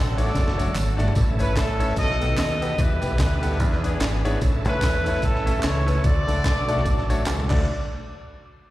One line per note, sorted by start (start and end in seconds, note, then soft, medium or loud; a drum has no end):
0.00 0.28 A1 loud
0.00 0.14 D3 medium
0.00 1.15 F#3 medium
0.00 1.13 A3 medium
0.00 0.31 D4 medium
0.00 1.15 D4 medium
0.00 0.17 F#4 medium
0.00 0.14 A4 loud
0.00 1.13 A4 medium
0.16 0.29 A3 medium
0.16 0.30 D4 medium
0.16 0.29 F#4 medium
0.16 0.95 F#4 medium
0.16 0.30 A4 medium
0.16 0.95 A4 medium
0.16 0.30 C#5 medium
0.16 0.58 D5 loud
0.16 closed hi-hat medium
0.16 tambourine medium
0.27 snare soft
0.35 0.69 F#1 loud
0.35 kick loud
0.35 snare medium
0.35 closed hi-hat medium
0.35 tambourine medium
0.48 snare medium
0.57 0.70 A3 medium
0.57 0.70 D4 medium
0.57 0.70 F#4 medium
0.57 0.70 A4 medium
0.57 0.70 C#5 medium
0.57 closed hi-hat medium
0.57 tambourine medium
0.68 high tom medium
0.75 1.10 G#1 medium
0.75 clap loud
0.75 closed hi-hat medium
0.75 mid tom medium
0.75 tambourine loud
0.97 1.10 A3 medium
0.97 1.10 D4 medium
0.97 1.11 F#4 medium
0.97 1.11 A4 medium
0.97 1.11 D5 loud
0.97 closed hi-hat medium
0.97 floor tom loud
0.97 tambourine medium
1.08 floor tom loud
1.14 1.39 A1 loud
1.14 1.76 A2 medium
1.14 1.96 E3 medium
1.14 2.77 A3 medium
1.14 1.96 C#4 medium
1.14 1.96 A4 medium
1.14 kick loud
1.14 closed hi-hat loud
1.14 tambourine medium
1.38 1.54 G1 loud
1.38 1.51 A3 medium
1.38 1.51 C#4 medium
1.38 1.52 E4 medium
1.38 1.52 A4 medium
1.38 1.56 B4 loud
1.38 1.52 C#5 medium
1.38 closed hi-hat medium
1.38 tambourine medium
1.56 1.91 A1 loud
1.56 1.95 C#4 medium
1.56 1.95 E4 medium
1.56 1.95 A4 loud
1.56 kick medium
1.56 snare loud
1.56 clap medium
1.56 closed hi-hat loud
1.56 tambourine medium
1.79 1.92 A3 medium
1.79 1.92 C#4 medium
1.79 1.92 E4 medium
1.79 1.92 A4 medium
1.79 1.92 C#5 medium
1.79 closed hi-hat medium
1.79 tambourine medium
1.89 snare soft
1.96 2.32 B1 loud
1.96 2.57 B2 medium
1.96 2.78 D#3 medium
1.96 4.39 B3 medium
1.96 2.37 F#4 medium
1.96 3.59 A4 medium
1.96 2.37 A4 medium
1.96 2.35 D#5 loud
1.96 kick loud
1.96 closed hi-hat medium
1.96 tambourine medium
2.10 snare soft
2.20 2.33 B3 medium
2.20 2.33 D#4 medium
2.20 2.33 F#4 medium
2.20 2.33 G4 medium
2.20 2.33 A4 medium
2.20 closed hi-hat medium
2.20 tambourine medium
2.37 2.72 D#2 medium
2.37 2.76 F#4 medium
2.37 2.76 A4 medium
2.37 2.76 D#5 loud
2.37 snare loud
2.37 clap loud
2.37 closed hi-hat medium
2.37 tambourine loud
2.61 2.74 B3 medium
2.61 2.74 D#4 medium
2.61 2.74 F#4 medium
2.61 2.74 G4 medium
2.61 2.74 B4 medium
2.61 closed hi-hat medium
2.61 tambourine medium
2.78 2.99 E2 loud
2.78 3.39 E3 medium
2.78 6.01 E3 medium
2.78 3.59 G3 medium
2.78 3.19 E4 medium
2.78 3.18 G4 medium
2.78 3.18 B4 loud
2.78 kick loud
2.78 closed hi-hat loud
2.78 tambourine medium
3.01 3.17 B1 medium
3.01 3.14 G3 medium
3.01 3.14 B3 medium
3.01 3.14 E4 medium
3.01 3.14 G4 medium
3.01 3.14 B4 medium
3.01 closed hi-hat medium
3.01 tambourine medium
3.19 3.60 D2 loud
3.19 3.57 E4 medium
3.19 3.57 G4 medium
3.19 3.57 B4 medium
3.19 kick medium
3.19 snare loud
3.19 clap medium
3.19 closed hi-hat loud
3.19 tambourine medium
3.42 3.54 G3 medium
3.42 3.55 B3 medium
3.42 3.55 E4 medium
3.42 3.55 G4 medium
3.42 3.55 A4 medium
3.42 closed hi-hat medium
3.42 tambourine medium
3.52 snare soft
3.59 3.94 E2 loud
3.59 4.20 E3 medium
3.59 4.38 B3 medium
3.59 4.41 D4 medium
3.59 4.38 D4 medium
3.59 4.41 G#4 medium
3.59 4.25 G#4 medium
3.59 kick loud
3.59 closed hi-hat medium
3.59 tambourine medium
3.72 snare soft
3.83 3.96 B3 medium
3.83 3.96 D4 medium
3.83 3.96 E4 medium
3.83 3.96 G#4 medium
3.83 3.96 B4 medium
3.83 closed hi-hat medium
3.83 tambourine medium
4.00 4.35 G#1 medium
4.00 snare loud
4.00 clap loud
4.00 closed hi-hat medium
4.00 tambourine loud
4.25 4.37 B3 medium
4.25 4.37 D4 medium
4.25 4.37 E4 medium
4.25 4.37 G#4 medium
4.25 4.37 C#5 loud
4.25 closed hi-hat medium
4.25 tambourine soft
4.41 4.65 A1 loud
4.41 5.03 A2 medium
4.41 7.47 A3 medium
4.41 6.02 C#4 medium
4.41 7.47 A4 medium
4.41 kick loud
4.41 closed hi-hat loud
4.41 tambourine medium
4.65 4.80 C#2 loud
4.65 4.77 A3 medium
4.65 4.77 C#4 medium
4.65 4.78 E4 medium
4.65 5.22 E4 medium
4.65 4.78 A4 medium
4.65 5.20 B4 loud
4.65 4.78 C#5 medium
4.65 closed hi-hat medium
4.65 tambourine medium
4.82 5.17 E2 loud
4.82 kick loud
4.82 snare loud
4.82 clap medium
4.82 closed hi-hat loud
4.82 tambourine medium
5.06 5.18 A3 medium
5.06 5.18 C#4 medium
5.06 5.18 E4 medium
5.06 5.18 A4 medium
5.06 5.19 C#5 medium
5.06 closed hi-hat medium
5.06 tambourine medium
5.15 snare soft
5.22 5.57 A1 loud
5.22 6.01 C#4 medium
5.22 5.62 E4 medium
5.22 5.62 A4 medium
5.22 kick loud
5.22 closed hi-hat medium
5.22 tambourine medium
5.35 snare soft
5.46 5.58 A3 medium
5.46 5.58 C#4 medium
5.46 5.59 E4 medium
5.46 5.59 A4 medium
5.46 5.59 E5 medium
5.46 closed hi-hat medium
5.46 tambourine medium
5.63 5.98 C#2 medium
5.63 6.01 E4 medium
5.63 6.01 A4 medium
5.63 6.04 C#5 loud
5.63 snare loud
5.63 clap loud
5.63 closed hi-hat medium
5.63 tambourine loud
5.86 5.99 A3 medium
5.86 5.99 C#4 medium
5.86 5.99 E4 medium
5.86 5.99 A4 medium
5.86 5.99 B4 medium
5.86 closed hi-hat medium
5.86 tambourine medium
6.03 6.25 D2 loud
6.03 6.65 D3 medium
6.03 7.48 F#3 medium
6.03 7.49 D4 medium
6.03 7.22 F#4 medium
6.03 7.22 A4 medium
6.03 7.26 D5 loud
6.03 kick loud
6.03 closed hi-hat loud
6.03 tambourine medium
6.27 6.42 C#2 medium
6.27 6.40 A3 medium
6.27 6.40 D4 medium
6.27 6.40 F#4 medium
6.27 6.40 A4 medium
6.27 6.40 D5 medium
6.27 closed hi-hat medium
6.27 tambourine medium
6.44 6.79 B1 medium
6.44 kick loud
6.44 snare loud
6.44 clap medium
6.44 closed hi-hat loud
6.44 tambourine medium
6.68 6.81 A3 medium
6.68 6.81 D4 medium
6.68 6.81 F#4 medium
6.68 6.81 A4 medium
6.68 6.81 D5 loud
6.68 closed hi-hat medium
6.68 tambourine medium
6.77 snare soft
6.85 7.26 A1 medium
6.85 kick loud
6.85 closed hi-hat medium
6.85 tambourine medium
6.98 snare soft
7.09 7.21 A3 medium
7.09 7.22 D4 medium
7.09 7.21 F#4 medium
7.09 7.22 A4 medium
7.09 7.21 C#5 medium
7.09 closed hi-hat medium
7.09 tambourine medium
7.26 7.47 C#2 medium
7.26 snare medium
7.26 clap loud
7.26 closed hi-hat medium
7.26 tambourine loud
7.40 mid tom medium
7.50 7.66 D2 medium
7.50 7.66 F#3 medium
7.50 7.66 A3 medium
7.50 7.65 D4 medium
7.50 7.66 D4 medium
7.50 7.66 F#4 medium
7.50 7.65 A4 medium
7.50 7.66 A4 medium
7.50 7.66 D5 loud
7.50 kick loud
7.50 clap medium
7.50 crash medium